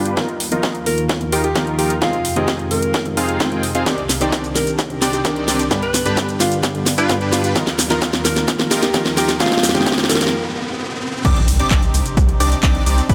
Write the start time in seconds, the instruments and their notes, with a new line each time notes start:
Already playing: grand piano G2 D3 G3 B3 B4, analog synth pad G2 G3 B3 D4 D5, supersaw synth D4 G4 B4
0.06 alto saxophone F4, closed hi-hat
0.17 analog synth pad D#2 D#3 A#3 F4 A#4, grand piano D#3 F3 A#3 F4, supersaw synth D#4 F4 A#4, kick, snare, closed hi-hat
0.29 closed hi-hat
0.40 open hi-hat
0.51 grand piano D#3 F3 A#3 F4, supersaw synth D#4 F4 A#4, closed hi-hat
0.63 kick, snare, closed hi-hat
0.75 closed hi-hat
0.86 grand piano D#3 F3 A#3 F4, alto saxophone A#4, open hi-hat
0.98 closed hi-hat
1.09 kick, snare, closed hi-hat
1.20 grand piano D#3 F3 A#3 F4, closed hi-hat
1.32 supersaw synth D#4 F4 A#4, alto saxophone G4, open hi-hat
1.44 alto saxophone G4, closed hi-hat
1.55 grand piano D#3 F3 A#3 G4, supersaw synth D#4 F4 A#4, kick, snare, closed hi-hat
1.67 closed hi-hat
1.79 supersaw synth D#4 F4 A#4, alto saxophone G4, open hi-hat
1.90 closed hi-hat
2.01 analog synth pad F2 C3 G#3 D#4 G4, grand piano D#3 G#3 C4 F4, supersaw synth C4 D#4 F4 G#4 D#5, alto saxophone F4, kick, snare, closed hi-hat
2.13 closed hi-hat
2.25 open hi-hat
2.36 grand piano D#3 G#3 C4 F4, supersaw synth C4 D#4 F4 G#4 D#5, alto saxophone G4, closed hi-hat
2.48 kick, snare, closed hi-hat
2.59 closed hi-hat
2.70 grand piano D#3 G#3 C4 F4, alto saxophone A#4, open hi-hat
2.83 closed hi-hat
2.94 kick, snare, closed hi-hat
3.05 grand piano D#3 G#3 C4 F4, closed hi-hat
3.17 supersaw synth C4 D#4 F4 G#4 F5, open hi-hat
3.29 closed hi-hat
3.40 grand piano D#3 G#3 C4 D#4, supersaw synth C4 D#4 F4 G#4 G5, kick, snare, closed hi-hat
3.51 grand piano D#3 G#3 C4 F4, closed hi-hat
3.63 open hi-hat
3.75 supersaw synth C4 D#4 F4 G#4 F5, closed hi-hat
3.86 analog synth pad C2 D#3 D4, grand piano D#3 C4 D4 G4, supersaw synth C4 D4 D#4 G4 D5, kick, snare, closed hi-hat, riser, shaker
3.98 closed hi-hat
4.09 snare, open hi-hat, shaker
4.20 grand piano D#3 C4 D4 G4, supersaw synth C4 D4 D#4 G4 D5, closed hi-hat, shaker
4.32 kick, snare, closed hi-hat, shaker
4.44 closed hi-hat, shaker
4.55 grand piano D#3 C4 D4 G4, alto saxophone A#4, snare, open hi-hat, shaker
4.67 closed hi-hat, shaker
4.79 kick, snare, closed hi-hat, shaker
4.90 grand piano D#3 C4 D4 G4, closed hi-hat
5.02 supersaw synth C4 D4 D#4 G4 D5, alto saxophone G4, snare, open hi-hat, shaker
5.13 alto saxophone G4, closed hi-hat, shaker
5.24 grand piano D#3 C4 D4 A#4, supersaw synth C4 D4 D#4 G4 D5, kick, snare, closed hi-hat, shaker
5.36 closed hi-hat
5.48 supersaw synth C4 D4 D#4 G4 D5, snare, open hi-hat, shaker
5.59 closed hi-hat, shaker
5.70 grand piano G2 D3 G3 B3 G4, analog synth pad G2 D3 B3 D5, supersaw synth D4 G4 B4, kick, snare, closed hi-hat, shaker
5.83 alto saxophone B4, closed hi-hat
5.94 snare, open hi-hat, shaker
6.05 grand piano G2 D3 G3 B3 G4, supersaw synth D4 G4 B4, closed hi-hat, shaker
6.17 kick, snare, closed hi-hat, shaker
6.29 closed hi-hat, shaker
6.40 grand piano G2 D3 G3 B3 G4, alto saxophone F4, snare, open hi-hat, shaker
6.52 closed hi-hat, shaker
6.63 kick, snare, closed hi-hat, shaker
6.74 grand piano G2 D3 G3 B3 G4, closed hi-hat
6.86 snare, open hi-hat, shaker
6.98 supersaw synth D4 G4 B4, alto saxophone F4, closed hi-hat, shaker
7.09 grand piano G2 D3 G3 B3 B4, kick, snare, closed hi-hat, shaker
7.21 supersaw synth D4 G4 B4, closed hi-hat
7.32 alto saxophone F4, snare, open hi-hat, shaker
7.44 alto saxophone F4, closed hi-hat, shaker
7.55 analog synth pad D#2 D#3 A#3 F4 A#4, grand piano D#3 F3 A#3 F4, supersaw synth D#4 F4 A#4, kick, snare, closed hi-hat, shaker
7.67 snare, closed hi-hat
7.79 snare, open hi-hat, shaker
7.90 grand piano D#3 F3 A#3 F4, supersaw synth D#4 F4 A#4, snare, closed hi-hat, shaker
8.02 kick, snare, closed hi-hat, shaker
8.13 snare, closed hi-hat, shaker
8.24 grand piano D#3 F3 A#3 F4, alto saxophone A#4, snare, open hi-hat, shaker
8.36 snare, closed hi-hat, shaker
8.48 kick, snare, closed hi-hat, shaker
8.59 grand piano D#3 F3 A#3 F4, snare, closed hi-hat
8.71 supersaw synth D#4 F4 A#4, alto saxophone G4, snare, open hi-hat, shaker
8.83 alto saxophone G4, snare, closed hi-hat, shaker
8.93 grand piano D#3 F3 A#3 G4, supersaw synth D#4 F4 A#4, kick, snare, closed hi-hat, shaker
9.06 snare, closed hi-hat
9.17 supersaw synth D#4 F4 A#4, alto saxophone G4, snare, open hi-hat, shaker
9.29 snare, closed hi-hat, shaker
9.40 analog synth pad F2 F3 G#3 D#4 G4, grand piano D#3 G#3 C4 F4, supersaw synth C4 D#4 F4 G#4 D#5, alto saxophone F4, kick, snare, closed hi-hat, shaker
9.46 snare
9.52 snare, closed hi-hat
9.58 snare
9.63 snare, open hi-hat, shaker
9.69 snare
9.74 grand piano D#3 G#3 C4 F4, supersaw synth C4 D#4 F4 G#4 D#5, alto saxophone G4, snare, closed hi-hat, shaker
9.81 snare
9.86 kick, snare, closed hi-hat, shaker
9.92 snare
9.98 snare, closed hi-hat, shaker
10.04 snare
10.09 grand piano D#3 G#3 C4 F4, alto saxophone A#4, snare, open hi-hat, shaker
10.15 snare
10.21 snare, closed hi-hat, shaker
10.27 snare
11.25 sub bass C2, analog synth pad C3 C4 D4 D#4 G4, supersaw synth C4 D4 D#4 G4 D5, digital synth lead D6, kick, closed hi-hat, crash, impact, shaker
11.36 closed hi-hat
11.48 sub bass C2, open hi-hat, shaker
11.59 supersaw synth C4 D4 D#4 G4 D5, digital synth lead D6, closed hi-hat, shaker
11.71 sub bass C2, kick, clap, closed hi-hat, shaker
11.83 closed hi-hat, shaker
11.94 sub bass C2, open hi-hat, shaker
12.06 closed hi-hat, shaker
12.17 sub bass C2, kick, closed hi-hat, shaker
12.29 closed hi-hat
12.40 sub bass C2, supersaw synth C4 D4 D#4 G4 D5, digital synth lead D6, open hi-hat, shaker
12.52 closed hi-hat, shaker
12.63 sub bass C2, supersaw synth C4 D4 D#4 G4 D5, digital synth lead D6, kick, clap, closed hi-hat, shaker
12.75 closed hi-hat
12.86 sub bass C2, supersaw synth C4 D4 D#4 G4 D5, digital synth lead D6, open hi-hat, shaker
12.98 closed hi-hat, shaker
13.09 sub bass G1, analog synth pad G3 B3, supersaw synth D4 G4 B4, digital synth lead B5, kick, closed hi-hat, shaker